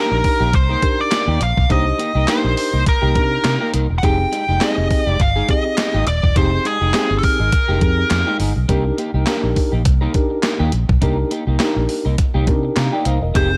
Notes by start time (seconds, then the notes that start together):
Already playing: D4 D#4 G4 A#4
0.11 A#1, muted clean electric guitar stroke
0.24 muted clean electric guitar stroke, kick, open hi-hat
0.40 A#1 A#3 D#4 G4
0.53 C2 C5, muted clean electric guitar stroke, kick, closed hi-hat
0.69 A#3 D#4 A#4
0.82 D4 D#4 G4 A#4, muted clean electric guitar stroke, kick, closed hi-hat
0.99 D5, muted clean electric guitar stroke
1.11 muted clean electric guitar stroke, snare, clap, closed hi-hat
1.28 D#2 A#3 D#4 G4
1.41 A#1 F5, muted clean electric guitar stroke, closed hi-hat
1.57 B1, muted clean electric guitar stroke, kick
1.69 C2 A#3 D4 D#4 G4 C5 D#5, kick, closed hi-hat
1.98 A#3 D#4 G4, closed hi-hat
2.15 C2 A#3 D#4 G4
2.28 A#3 D4 D#4 G4 A#4 C5, snare, clap, closed hi-hat
2.44 A#1, muted clean electric guitar stroke
2.57 muted clean electric guitar stroke, open hi-hat
2.73 C2 A#3 D#4 A#4
2.86 A#4, muted clean electric guitar stroke, kick, closed hi-hat
3.02 C2 A#3 D#4 G4
3.15 C3 D4 D#4 G4 A#4, muted clean electric guitar stroke, kick, closed hi-hat
3.31 muted clean electric guitar stroke
3.44 C3, muted clean electric guitar stroke, snare, clap, closed hi-hat
3.61 A#3 D#4 G4
3.73 C2 A#3 D#4 A#4, closed hi-hat
3.90 E1, muted clean electric guitar stroke
3.98 F#5
4.03 F1 G#3 C4 D#4 G4 G#4 G5, kick, closed hi-hat
4.19 muted clean electric guitar stroke
4.32 G#3 D#4 G4, closed hi-hat
4.48 F1 G#3 D#4 G4
4.61 G#3 C4 D#4 G4 G#4 D#5, snare, clap, closed hi-hat
4.78 F1, muted clean electric guitar stroke
4.90 muted clean electric guitar stroke, kick, open hi-hat
5.06 F1 G#3 D#4 G4 D5
5.20 G1 F5, muted clean electric guitar stroke, kick, closed hi-hat
5.36 G#3 D#4 G#4
5.49 C4 D#4 G4 G#4 D#5, muted clean electric guitar stroke, kick, closed hi-hat
5.65 muted clean electric guitar stroke
5.77 muted clean electric guitar stroke, snare, clap, closed hi-hat
5.94 G#1 G#3 D#4 G4
6.07 D#1 D5, muted clean electric guitar stroke, closed hi-hat
6.23 E1, muted clean electric guitar stroke, kick
6.35 F1 G#3 C4 D#4 G4 G#4 C5, kick, closed hi-hat
6.52 muted clean electric guitar stroke
6.65 G#3 D#4 G4 G#4, closed hi-hat
6.81 F1 G#3 D#4 G4
6.93 G#3 C4 D#4 G4 G#4, snare, clap, closed hi-hat
7.10 G1, muted clean electric guitar stroke
7.18 A4
7.23 A#4, muted clean electric guitar stroke, kick, open hi-hat
7.39 G#1 G#3 D#4 G#4
7.52 muted clean electric guitar stroke, kick, closed hi-hat
7.68 F1 G#3 D#4 G4
7.81 F2 C4 D#4 G4 G#4, muted clean electric guitar stroke, kick, closed hi-hat
7.98 muted clean electric guitar stroke
8.10 F2, muted clean electric guitar stroke, snare, clap, closed hi-hat
8.27 G#3 D#4 G4
8.39 G1 G#3 D#4 G#4, open hi-hat
8.56 B1, muted clean electric guitar stroke
8.69 C2 A#3 D4 D#4 G4 A#4, kick, closed hi-hat
8.85 muted clean electric guitar stroke
8.98 A#3 D#4 G4, closed hi-hat
9.14 C2 A#3 D#4 G4
9.27 A#3 D4 D#4 G4 A#4, snare, clap, closed hi-hat
9.43 A#1, muted clean electric guitar stroke
9.56 muted clean electric guitar stroke, kick, open hi-hat
9.72 A#1 A#3 D#4 G4
9.85 C2, muted clean electric guitar stroke, kick, closed hi-hat
10.01 A#3 D#4 A#4
10.14 D4 D#4 G4 A#4, muted clean electric guitar stroke, kick, closed hi-hat
10.30 muted clean electric guitar stroke
10.43 muted clean electric guitar stroke, snare, clap, closed hi-hat
10.59 D#2 A#3 D#4 G4
10.72 A#1, muted clean electric guitar stroke, closed hi-hat
10.89 B1, muted clean electric guitar stroke, kick
11.01 C2 A#3 D4 D#4 G4 A#4, kick, closed hi-hat
11.18 muted clean electric guitar stroke
11.31 A#3 D#4 G4, closed hi-hat
11.47 C2 A#3 D#4 G4
11.60 A#3 D4 D#4 G4 A#4, snare, clap, closed hi-hat
11.76 A#1, muted clean electric guitar stroke
11.89 muted clean electric guitar stroke, open hi-hat
12.05 C2 A#3 D#4 A#4
12.18 kick, closed hi-hat
12.34 C2 A#3 D#4 G4
12.47 C3 D4 D#4 G4 A#4, muted clean electric guitar stroke, kick, closed hi-hat
12.63 muted clean electric guitar stroke
12.76 C3 F5 A#5, muted clean electric guitar stroke, snare, clap, closed hi-hat
12.92 A#3 D#4 G4 D5 G5
13.05 C2 A#3 D#4 A#4 C5 F5, closed hi-hat
13.22 E1 A#4 D#5, muted clean electric guitar stroke
13.34 F1 G#3 C4 D#4 G4 G#4 C5, kick, closed hi-hat
13.51 muted clean electric guitar stroke